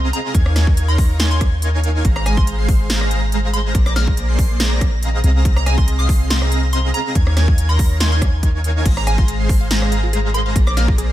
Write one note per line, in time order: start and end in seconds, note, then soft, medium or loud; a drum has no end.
0.00 0.11 C2 medium
0.00 0.32 C4 medium
0.00 0.32 G#4 medium
0.00 0.32 D#5 medium
0.00 0.32 F5 medium
0.00 0.32 A#5 medium
0.00 0.32 A#6 medium
0.13 0.25 A#5 medium
0.13 closed hi-hat medium
0.35 2.03 D#2 medium
0.35 0.53 D#4 medium
0.35 0.54 A#4 medium
0.35 0.53 C#5 medium
0.35 0.53 F5 medium
0.35 0.54 G#5 medium
0.35 0.53 G#6 medium
0.35 kick loud
0.35 closed hi-hat medium
0.46 cross-stick medium
0.56 0.86 D#4 medium
0.56 0.86 A#4 medium
0.56 0.86 C#5 medium
0.56 0.86 F5 medium
0.56 0.86 G#5 medium
0.56 0.86 G#6 medium
0.56 cross-stick medium
0.56 snare medium
0.56 closed hi-hat medium
0.67 kick loud
0.77 closed hi-hat medium
0.88 1.17 D#4 medium
0.88 1.17 A#4 medium
0.88 1.17 C#5 medium
0.88 1.17 F5 medium
0.88 1.17 A#5 medium
0.88 0.99 C6 medium
0.88 1.17 A#6 medium
0.98 kick loud
0.98 open hi-hat medium
1.19 1.50 D#4 medium
1.19 1.50 A#4 medium
1.19 1.50 C#5 medium
1.19 1.50 F5 medium
1.19 1.50 G#5 medium
1.19 1.27 C6 medium
1.19 1.50 G#6 medium
1.19 snare loud
1.19 closed hi-hat medium
1.31 1.37 C6 medium
1.41 kick loud
1.41 cross-stick medium
1.41 closed hi-hat medium
1.62 2.02 D#4 medium
1.62 2.02 A#4 medium
1.62 2.02 C#5 medium
1.62 2.02 F5 medium
1.62 2.02 G#5 medium
1.62 2.02 G#6 medium
1.62 closed hi-hat medium
1.84 closed hi-hat medium
2.05 3.73 G#1 medium
2.05 2.24 G#3 medium
2.05 2.24 G#4 medium
2.05 2.24 C5 medium
2.05 2.24 F5 medium
2.05 2.24 A#5 medium
2.05 2.24 A#6 medium
2.05 kick loud
2.05 closed hi-hat medium
2.16 2.24 A#5 medium
2.16 cross-stick medium
2.26 2.56 G#3 medium
2.26 2.56 G#4 medium
2.26 2.56 C5 medium
2.26 2.56 F5 medium
2.26 2.35 G#5 medium
2.26 2.56 A#5 medium
2.26 2.56 A#6 medium
2.26 cross-stick medium
2.26 closed hi-hat medium
2.37 2.48 C6 medium
2.37 kick loud
2.47 closed hi-hat medium
2.59 2.88 G#3 medium
2.59 2.88 G#4 medium
2.59 2.88 C5 medium
2.59 2.88 F5 medium
2.59 2.88 C6 medium
2.59 2.87 C7 medium
2.69 kick loud
2.69 open hi-hat medium
2.90 3.20 G#3 medium
2.90 3.20 G#4 medium
2.90 3.20 C5 medium
2.90 3.20 F5 medium
2.90 3.20 A#5 medium
2.90 3.20 A#6 medium
2.90 snare loud
2.90 closed hi-hat medium
3.01 cross-stick medium
3.11 closed hi-hat medium
3.32 3.73 G#3 medium
3.32 3.73 G#4 medium
3.32 3.73 C5 medium
3.32 3.73 F5 medium
3.32 3.73 A#5 medium
3.32 3.73 A#6 medium
3.32 closed hi-hat medium
3.53 3.65 C6 medium
3.53 closed hi-hat medium
3.75 5.22 A#1 medium
3.75 3.94 A#3 medium
3.75 3.94 G#4 medium
3.75 3.94 C5 medium
3.75 3.94 D5 medium
3.75 3.94 A#5 medium
3.75 kick loud
3.75 closed hi-hat medium
3.86 3.94 D6 medium
3.86 cross-stick medium
3.96 4.26 A#3 medium
3.96 4.26 G#4 medium
3.96 4.26 C5 medium
3.96 4.26 D5 medium
3.96 4.26 A#5 medium
3.96 4.29 F6 loud
3.96 4.26 A#6 medium
3.96 cross-stick medium
3.96 snare medium
3.96 closed hi-hat medium
4.07 kick loud
4.17 closed hi-hat medium
4.29 4.58 A#3 medium
4.29 4.58 G#4 medium
4.29 4.58 C5 medium
4.29 4.58 D5 medium
4.29 4.58 C6 medium
4.29 4.58 C7 medium
4.39 kick loud
4.39 open hi-hat medium
4.60 4.90 A#3 medium
4.60 4.90 G#4 medium
4.60 4.90 C5 medium
4.60 4.90 D5 medium
4.60 4.90 A#5 medium
4.60 4.90 A#6 medium
4.60 snare loud
4.60 closed hi-hat medium
4.81 kick loud
4.81 cross-stick medium
4.81 closed hi-hat medium
5.03 5.43 C4 medium
5.03 5.43 G#4 medium
5.03 5.43 D#5 medium
5.03 5.43 F5 medium
5.03 5.43 A#5 medium
5.03 5.43 A#6 medium
5.03 closed hi-hat medium
5.24 6.92 C2 medium
5.24 closed hi-hat medium
5.45 5.64 C4 medium
5.45 5.64 G#4 medium
5.45 5.64 D#5 medium
5.45 5.64 F5 medium
5.45 5.64 A#5 medium
5.45 kick loud
5.45 closed hi-hat medium
5.56 5.64 A#5 medium
5.56 cross-stick medium
5.66 5.96 C4 medium
5.66 5.96 G#4 medium
5.66 5.96 D#5 medium
5.66 5.96 F5 medium
5.66 5.75 G#5 medium
5.66 5.96 A#5 medium
5.66 5.96 A#6 medium
5.66 cross-stick medium
5.66 closed hi-hat medium
5.78 5.88 C6 loud
5.78 kick loud
5.88 closed hi-hat medium
5.99 6.28 C4 medium
5.99 6.28 G#4 medium
5.99 6.28 D#5 medium
5.99 6.28 F5 medium
5.99 6.28 C6 medium
5.99 6.09 D#6 loud
5.99 6.28 C7 medium
6.09 kick loud
6.09 open hi-hat medium
6.30 6.60 C4 medium
6.30 6.60 G#4 medium
6.30 6.60 D#5 medium
6.30 6.60 F5 medium
6.30 6.60 A#5 medium
6.30 6.42 C6 medium
6.30 6.60 A#6 medium
6.30 snare loud
6.30 closed hi-hat medium
6.42 cross-stick medium
6.52 closed hi-hat medium
6.73 7.13 C4 medium
6.73 7.13 G#4 medium
6.73 7.13 D#5 medium
6.73 7.13 F5 medium
6.73 7.13 A#5 medium
6.73 6.85 C6 medium
6.73 7.13 A#6 medium
6.73 closed hi-hat medium
6.94 7.06 A#5 medium
6.94 closed hi-hat medium
7.15 8.84 D#2 medium
7.15 7.34 D#4 medium
7.15 7.34 A#4 medium
7.15 7.34 C#5 medium
7.15 7.34 F5 medium
7.15 7.34 G#5 medium
7.15 7.34 G#6 medium
7.15 kick loud
7.15 closed hi-hat medium
7.27 cross-stick medium
7.37 7.67 D#4 medium
7.37 7.67 A#4 medium
7.37 7.67 C#5 medium
7.37 7.67 F5 medium
7.37 7.67 G#5 medium
7.37 7.67 G#6 medium
7.37 cross-stick medium
7.37 snare medium
7.37 closed hi-hat medium
7.48 kick loud
7.58 closed hi-hat medium
7.69 7.98 D#4 medium
7.69 7.98 A#4 medium
7.69 7.98 C#5 medium
7.69 7.98 F5 medium
7.69 7.98 A#5 medium
7.69 7.79 C6 medium
7.69 7.98 A#6 medium
7.79 kick loud
7.79 open hi-hat loud
8.00 8.30 D#4 medium
8.00 8.30 A#4 medium
8.00 8.30 C#5 medium
8.00 8.30 F5 medium
8.00 8.30 G#5 medium
8.00 8.08 C6 medium
8.00 8.30 G#6 medium
8.00 snare loud
8.00 closed hi-hat medium
8.12 8.18 C6 medium
8.22 kick loud
8.22 cross-stick medium
8.22 closed hi-hat medium
8.43 8.83 D#4 medium
8.43 8.83 A#4 medium
8.43 8.83 C#5 medium
8.43 8.83 F5 medium
8.43 8.83 G#5 medium
8.43 8.83 G#6 medium
8.43 kick medium
8.43 closed hi-hat medium
8.64 closed hi-hat medium
8.85 10.54 G#1 medium
8.85 9.04 G#3 medium
8.85 8.91 F4 medium
8.85 9.04 G#4 medium
8.85 9.04 C5 medium
8.85 9.04 F5 medium
8.85 9.04 A#5 medium
8.85 9.04 A#6 medium
8.85 kick loud
8.85 closed hi-hat medium
8.85 crash medium
8.97 9.05 A#5 medium
8.97 cross-stick medium
9.07 9.37 G#3 medium
9.07 9.37 G#4 medium
9.07 9.37 C5 medium
9.07 9.13 F5 medium
9.07 9.37 F5 medium
9.07 9.16 G#5 loud
9.07 9.37 A#5 medium
9.07 9.37 A#6 medium
9.07 cross-stick medium
9.07 closed hi-hat medium
9.18 9.26 F4 medium
9.18 9.29 C6 loud
9.18 kick loud
9.28 9.34 G#4 medium
9.28 closed hi-hat medium
9.40 9.68 G#3 medium
9.40 9.68 G#4 medium
9.40 9.68 C5 medium
9.40 9.68 F5 medium
9.40 9.68 C6 medium
9.40 9.68 C7 medium
9.49 9.55 A#4 medium
9.49 kick loud
9.49 open hi-hat medium
9.61 9.66 F5 loud
9.71 10.01 G#3 medium
9.71 9.76 F4 medium
9.71 10.01 G#4 medium
9.71 10.01 C5 medium
9.71 10.01 F5 medium
9.71 10.01 A#5 medium
9.71 10.01 A#6 medium
9.71 snare loud
9.71 closed hi-hat medium
9.82 cross-stick medium
9.92 9.98 F5 medium
9.92 closed hi-hat medium
10.03 10.11 F4 medium
10.13 10.53 G#3 medium
10.13 10.19 G#4 medium
10.13 10.53 G#4 medium
10.13 10.53 C5 medium
10.13 10.53 F5 medium
10.13 10.53 A#5 medium
10.13 10.53 A#6 medium
10.13 closed hi-hat medium
10.34 10.40 A#4 medium
10.34 10.46 C6 medium
10.34 closed hi-hat medium
10.46 10.51 F5 loud
10.56 11.12 A#1 medium
10.56 10.75 A#3 medium
10.56 10.61 F4 medium
10.56 10.75 G#4 medium
10.56 10.75 C5 medium
10.56 10.75 D5 medium
10.56 10.75 A#5 medium
10.56 10.75 A#6 medium
10.56 kick loud
10.56 closed hi-hat medium
10.67 10.75 D6 medium
10.67 cross-stick medium
10.77 11.07 A#3 medium
10.77 11.07 G#4 medium
10.77 11.07 C5 medium
10.77 11.07 D5 medium
10.77 10.83 F5 medium
10.77 11.07 A#5 medium
10.77 11.10 F6 medium
10.77 11.07 A#6 medium
10.77 cross-stick medium
10.77 snare medium
10.77 closed hi-hat medium
10.88 10.96 F4 medium
10.88 kick loud
10.98 11.04 G#4 medium
10.98 closed hi-hat medium